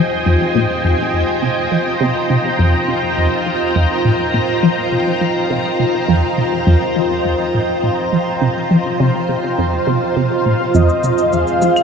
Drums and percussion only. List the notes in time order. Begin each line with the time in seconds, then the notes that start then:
10.74 shaker
10.89 shaker
11.04 shaker
11.18 shaker
11.33 shaker
11.47 shaker
11.62 shaker
11.76 claves, shaker